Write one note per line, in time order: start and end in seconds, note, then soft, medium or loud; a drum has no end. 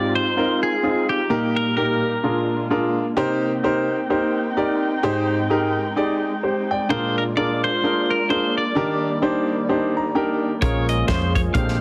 0.00 0.13 G#2 medium
0.00 1.27 G#3 medium
0.00 0.23 C4 medium
0.00 1.27 C4 medium
0.00 0.23 D#4 medium
0.00 2.20 D#4 medium
0.00 0.23 F4 medium
0.00 1.29 F4 medium
0.00 0.24 G4 medium
0.00 0.15 D5 medium
0.15 0.60 C5 medium
0.36 0.70 C4 medium
0.36 0.70 D#4 medium
0.36 0.70 F4 medium
0.36 0.71 A#4 medium
0.63 1.09 G#4 medium
0.83 1.17 C4 medium
0.83 1.17 D#4 medium
0.83 1.17 F4 medium
0.83 1.17 G#4 medium
1.09 1.58 G4 medium
1.29 2.23 A#2 medium
1.29 2.00 A#2 medium
1.29 2.22 G3 medium
1.29 2.22 A#3 medium
1.29 1.64 A#3 medium
1.29 1.64 D#4 medium
1.29 2.22 G4 medium
1.29 1.64 G4 medium
1.29 1.64 A#4 medium
1.56 1.76 A#4 medium
1.77 2.10 A#3 medium
1.77 2.10 D#4 medium
1.77 2.11 G4 medium
1.77 2.66 A#4 medium
1.77 2.11 A#4 medium
2.23 2.94 A#2 soft
2.23 3.17 G#3 medium
2.23 5.01 A#3 medium
2.23 2.57 D4 medium
2.23 3.16 D4 medium
2.23 2.57 F4 medium
2.23 3.16 F4 medium
2.23 2.57 G#4 medium
2.23 2.58 A#4 medium
2.70 3.04 D4 medium
2.70 3.04 F4 medium
2.70 3.04 G#4 medium
2.70 3.04 A#4 medium
3.17 3.87 C3 medium
3.17 6.87 C4 medium
3.17 3.50 D#4 loud
3.17 6.87 D#4 medium
3.17 3.50 G4 medium
3.17 3.51 A#4 medium
3.17 3.51 C5 loud
3.17 6.87 G5 medium
3.63 3.97 D#4 medium
3.63 3.97 G4 medium
3.63 3.97 A#4 medium
3.63 3.98 C5 medium
4.10 4.44 D#4 medium
4.10 4.44 G4 medium
4.10 4.44 A#4 medium
4.10 4.44 C5 medium
4.57 4.90 D#4 medium
4.57 4.90 G4 medium
4.57 4.91 A#4 medium
4.57 4.91 D5 medium
5.03 5.74 G#2 medium
5.03 8.72 G#3 medium
5.03 5.37 D#4 loud
5.03 5.37 G4 loud
5.03 5.37 G#4 medium
5.03 5.37 C5 loud
5.50 5.84 D#4 medium
5.50 5.84 G4 medium
5.50 5.84 G#4 medium
5.50 5.84 A#4 medium
5.96 6.30 D#4 medium
5.96 6.30 G4 medium
5.96 6.30 G#4 medium
5.96 6.30 D5 medium
6.43 6.70 G4 soft
6.43 6.69 C5 medium
6.71 7.15 D5 medium
6.71 7.15 G5 medium
6.89 7.60 A#2 medium
6.89 11.50 A#3 medium
6.89 7.23 D4 medium
6.89 8.74 F4 medium
6.89 7.23 F4 medium
6.89 7.23 G#4 medium
6.89 7.23 A#4 medium
6.89 7.18 C5 medium
6.89 10.58 D5 medium
7.18 7.23 A#4 medium
7.37 7.70 D4 medium
7.37 7.70 F4 medium
7.37 7.70 G#4 medium
7.37 7.70 A#4 medium
7.37 7.62 D5 medium
7.64 8.12 C5 medium
7.83 8.17 D4 medium
7.83 8.17 F4 medium
7.83 8.17 G#4 medium
7.83 8.17 A#4 medium
8.10 8.28 A#4 medium
8.29 8.63 D4 medium
8.29 8.63 F4 medium
8.29 8.63 G#4 medium
8.29 8.63 A#4 medium
8.29 8.57 C5 medium
8.58 10.39 D5 medium
8.75 9.46 D#3 medium
8.75 10.60 D#3 medium
8.75 10.60 G3 medium
8.75 9.09 D4 medium
8.75 9.09 D#4 medium
8.75 9.09 G4 medium
8.75 9.10 A#4 medium
9.22 9.56 D4 medium
9.22 9.56 D#4 medium
9.22 9.56 G4 medium
9.22 9.56 C5 medium
9.69 10.02 D4 medium
9.69 10.02 D#4 medium
9.69 10.02 G4 medium
9.69 10.03 C5 medium
9.97 10.14 A#5 medium
10.15 10.48 D4 medium
10.15 10.48 D#4 medium
10.15 10.49 G4 medium
10.15 10.49 A#4 medium
10.15 10.59 G5 medium
10.61 11.02 A#1 medium
10.61 11.32 A#2 medium
10.61 11.54 F3 medium
10.61 11.81 G#3 medium
10.61 11.54 G#3 soft
10.61 11.54 A#3 medium
10.61 10.95 C#4 medium
10.61 11.54 C#4 medium
10.61 11.54 F4 medium
10.61 10.95 F4 medium
10.61 10.95 G#4 medium
10.61 11.54 G#4 medium
10.61 10.96 A#4 loud
10.61 10.89 C#5 medium
10.61 kick loud
10.61 closed hi-hat medium
10.89 11.08 D#5 medium
10.89 closed hi-hat medium
11.08 11.48 F2 medium
11.08 11.42 C#4 medium
11.08 11.42 F4 medium
11.08 11.42 G#4 medium
11.08 11.33 C5 medium
11.08 11.42 C5 medium
11.08 kick medium
11.08 snare medium
11.08 closed hi-hat medium
11.35 11.41 C#5 medium
11.35 kick medium
11.35 closed hi-hat medium
11.54 11.81 A#1 loud
11.54 11.81 A#2 medium
11.54 11.81 D3 medium
11.54 11.81 G#3 medium
11.54 11.81 A#3 medium
11.54 11.81 C4 medium
11.54 11.81 D4 medium
11.54 11.81 G4 medium
11.54 11.81 G#4 medium
11.54 11.81 C5 medium
11.54 11.80 F5 medium
11.54 11.81 G5 medium
11.54 kick loud
11.54 closed hi-hat medium
11.68 snare soft